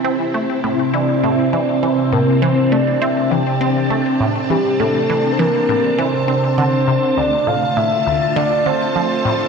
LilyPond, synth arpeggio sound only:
\new Staff \with { instrumentName = "Synth arpeggio sound" } { \clef bass \time 4/4 \key a \phrygian \tempo 4 = 101 c'8 a8 a,8 e8 a,8 e8 e8 a,8 | e8 a8 c'8 e8 c'8 a8 a,8 e8 | a,8 e8 e8 a,8 e8 c'8 d8 c8 | d,8 a,8 a,8 d,8 d8 d8 f8 a,8 | }